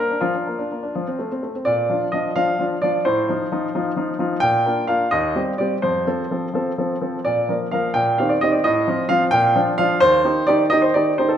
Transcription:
0.00 0.10 A#3 soft
0.00 0.21 A#4 medium
0.11 0.22 D4 soft
0.21 0.33 F3 medium
0.21 1.41 F4 medium
0.35 0.46 D4 soft
0.47 0.59 A#3 soft
0.59 0.70 D4 soft
0.72 0.83 A#3 soft
0.83 0.94 D4 soft
0.96 1.06 F3 soft
1.07 1.19 C4 soft
1.19 1.31 A3 soft
1.31 1.43 C4 soft
1.43 1.55 A3 soft
1.55 1.66 C4 soft
1.65 1.89 A#2 medium
1.65 2.12 D5 medium
1.90 2.06 F3 soft
1.90 2.07 D4 soft
1.90 2.07 F4 soft
2.12 2.29 F3 soft
2.12 2.30 D4 soft
2.12 2.30 F4 soft
2.12 2.33 D#5 medium
2.36 2.53 F3 soft
2.36 2.53 D4 soft
2.36 2.53 F4 soft
2.36 2.63 F5 medium
2.59 2.76 F3 soft
2.59 2.76 D4 soft
2.59 2.76 F4 soft
2.82 2.99 F3 soft
2.82 2.99 D4 soft
2.82 3.00 F4 soft
2.82 3.05 D5 medium
3.05 3.28 A2 medium
3.05 4.15 C5 medium
3.29 3.45 F3 soft
3.29 3.45 D#4 soft
3.29 3.46 F4 soft
3.52 3.68 F3 soft
3.52 3.68 D#4 soft
3.52 3.68 F4 medium
3.75 3.91 F3 soft
3.75 3.91 D#4 soft
3.75 3.91 F4 medium
3.97 4.13 F3 soft
3.97 4.13 D#4 soft
3.97 4.13 F4 medium
4.19 4.36 F3 soft
4.19 4.36 D#4 soft
4.19 4.36 F4 medium
4.40 4.64 A#2 medium
4.40 4.83 G5 loud
4.66 4.82 A#3 soft
4.66 4.82 D4 soft
4.66 4.82 F4 soft
4.87 5.05 A#3 soft
4.87 5.05 D4 soft
4.87 5.05 F4 medium
4.87 5.11 F5 medium
5.11 5.34 D#2 medium
5.11 5.39 D#5 medium
5.35 5.52 G3 soft
5.35 5.52 C4 soft
5.35 5.53 G4 soft
5.58 5.76 G3 soft
5.58 5.77 C4 soft
5.58 5.77 G4 soft
5.58 5.72 D5 medium
5.82 6.06 F2 medium
5.82 6.96 C5 medium
6.07 6.24 F3 soft
6.07 6.24 C4 soft
6.07 6.24 A4 soft
6.31 6.47 F3 soft
6.31 6.47 C4 soft
6.31 6.48 A4 soft
6.54 6.70 F3 soft
6.54 6.71 C4 soft
6.54 6.71 A4 soft
6.78 6.95 F3 soft
6.78 6.95 C4 soft
6.78 6.95 A4 soft
7.01 7.18 F3 soft
7.01 7.18 C4 soft
7.01 7.18 A4 soft
7.25 7.48 A#2 medium
7.25 7.53 D5 medium
7.49 7.65 F3 soft
7.49 7.66 A#3 soft
7.49 7.66 A#4 soft
7.71 7.89 F3 soft
7.71 7.89 A#3 soft
7.71 7.90 A#4 soft
7.71 7.92 F5 medium
7.94 8.17 A#2 medium
7.94 8.17 G5 medium
8.18 8.35 D#3 soft
8.18 8.35 C4 soft
8.18 8.36 G4 soft
8.18 8.29 F5 medium
8.29 8.41 D5 medium
8.41 8.58 D#3 soft
8.41 8.58 C4 soft
8.41 8.59 G4 soft
8.41 8.52 D#5 medium
8.52 8.63 D5 medium
8.64 8.86 A2 medium
8.64 9.09 D#5 medium
8.88 9.03 F3 soft
8.88 9.04 C4 soft
8.88 9.04 F4 medium
9.09 9.26 F3 medium
9.09 9.26 C4 medium
9.09 9.26 F4 medium
9.09 9.23 F5 loud
9.31 9.54 A#2 medium
9.31 9.59 G5 loud
9.56 9.72 F3 medium
9.56 9.72 D4 medium
9.56 9.72 F4 medium
9.78 9.95 F3 medium
9.78 9.96 D4 medium
9.78 9.96 F4 medium
9.78 9.99 F5 loud
10.00 10.24 D#2 medium
10.00 10.47 C5 loud
10.24 10.41 D#3 soft
10.24 10.41 D#4 soft
10.24 10.42 G4 soft
10.47 10.64 D#3 medium
10.47 10.65 D#4 medium
10.47 10.65 G4 medium
10.47 10.61 D5 medium
10.70 10.88 D#3 medium
10.70 10.88 D#4 soft
10.70 10.89 G4 medium
10.70 10.82 D#5 loud
10.82 10.94 C5 medium
10.94 11.12 D#3 soft
10.94 11.12 D#4 soft
10.94 11.12 G4 soft
10.94 11.15 D5 medium
11.18 11.36 D#3 soft
11.18 11.36 D#4 soft
11.18 11.36 G4 soft
11.18 11.30 C5 medium
11.29 11.37 A4 medium

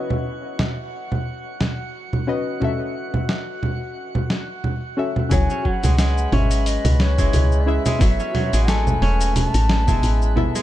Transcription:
0.00 2.23 C#4 medium
0.00 2.24 F#4 medium
0.00 5.32 F#4 medium
0.00 2.25 B4 medium
0.00 2.25 D#5 medium
0.00 5.32 F#5 medium
0.10 low conga medium
0.59 snare medium
0.59 low conga medium
1.12 low conga medium
1.61 snare medium
1.61 low conga medium
2.13 low conga medium
2.27 2.58 C#4 loud
2.27 2.58 F#4 medium
2.27 2.58 B4 medium
2.27 2.59 D#5 loud
2.60 4.93 C#4 medium
2.60 4.94 F#4 medium
2.60 4.95 A4 medium
2.60 low conga medium
2.64 4.95 E5 loud
3.14 low conga medium
3.29 snare medium
3.63 low conga medium
4.15 low conga medium
4.30 snare medium
4.64 low conga medium
4.97 5.27 C#4 loud
4.97 5.28 F#4 medium
4.97 5.28 A4 medium
4.97 5.28 E5 loud
5.16 low conga medium
5.29 5.46 C#2 loud
5.29 5.64 F#3 medium
5.29 7.14 C#4 loud
5.29 7.14 E4 medium
5.29 7.15 G#4 medium
5.29 10.62 B4 medium
5.29 5.67 G#5 loud
5.29 10.62 B5 medium
5.29 kick loud
5.29 open hi-hat medium
5.29 low conga medium
5.29 cabasa medium
5.33 7.16 C#5 loud
5.50 6.32 C#4 medium
5.50 cabasa soft
5.65 7.99 F#3 medium
5.65 6.35 F#5 loud
5.65 kick medium
5.84 6.27 C#2 medium
5.84 5.98 G#3 medium
5.84 open hi-hat soft
5.84 low conga medium
5.84 cabasa medium
5.99 7.18 G#3 medium
5.99 snare medium
5.99 open hi-hat medium
5.99 cabasa medium
6.18 cabasa soft
6.32 6.78 G#1 loud
6.32 8.07 C#4 medium
6.32 6.69 E5 loud
6.32 open hi-hat soft
6.32 low conga medium
6.51 open hi-hat soft
6.51 cabasa medium
6.66 7.02 D#5 loud
6.66 open hi-hat medium
6.66 cabasa medium
6.85 7.28 C#2 loud
6.85 open hi-hat medium
6.85 low conga medium
6.85 cabasa soft
7.00 7.70 C#5 loud
7.00 snare medium
7.00 open hi-hat soft
7.18 7.85 G#3 medium
7.18 7.63 C#4 medium
7.18 7.63 E4 medium
7.18 7.64 G#4 medium
7.18 7.64 E5 medium
7.18 kick loud
7.18 open hi-hat soft
7.18 cabasa medium
7.33 7.79 C#2 loud
7.33 open hi-hat medium
7.33 low conga medium
7.33 cabasa medium
7.52 cabasa soft
7.66 7.97 C#4 medium
7.66 7.97 E4 medium
7.66 7.97 G#4 medium
7.66 8.71 E5 loud
7.66 7.98 E5 loud
7.86 8.06 G#3 medium
7.86 open hi-hat soft
7.86 low conga medium
7.86 cabasa medium
7.99 8.15 A1 loud
7.99 8.33 F#3 medium
7.99 9.83 B3 loud
7.99 9.84 E4 medium
7.99 9.85 A4 medium
7.99 kick loud
7.99 open hi-hat medium
7.99 cabasa medium
8.03 9.85 E5 loud
8.20 9.02 C#4 medium
8.20 cabasa soft
8.35 10.62 F#3 medium
8.35 open hi-hat soft
8.35 low conga medium
8.53 8.97 A1 medium
8.53 9.87 G#3 medium
8.53 open hi-hat soft
8.53 cabasa medium
8.68 9.94 A3 medium
8.68 9.38 G#5 loud
8.68 snare medium
8.68 open hi-hat medium
8.68 cabasa medium
8.87 low conga medium
8.87 cabasa soft
9.02 9.48 E1 loud
9.02 10.62 C#4 medium
9.02 open hi-hat soft
9.21 open hi-hat soft
9.21 cabasa medium
9.36 10.37 A5 loud
9.36 open hi-hat medium
9.36 low conga medium
9.36 cabasa medium
9.54 9.98 A1 loud
9.54 open hi-hat medium
9.54 cabasa soft
9.70 snare medium
9.70 open hi-hat soft
9.87 10.54 G#3 medium
9.87 10.33 B3 medium
9.87 10.33 E4 medium
9.87 10.34 E5 medium
9.87 10.33 A5 medium
9.87 kick loud
9.87 open hi-hat soft
9.87 low conga medium
9.87 cabasa medium
10.03 10.49 A1 loud
10.03 open hi-hat medium
10.03 cabasa medium
10.22 cabasa soft
10.36 10.62 B3 loud
10.36 10.62 E4 medium
10.36 10.62 A4 medium
10.36 10.62 E5 loud
10.36 low conga medium
10.55 10.62 G#3 medium
10.55 open hi-hat soft
10.55 cabasa medium

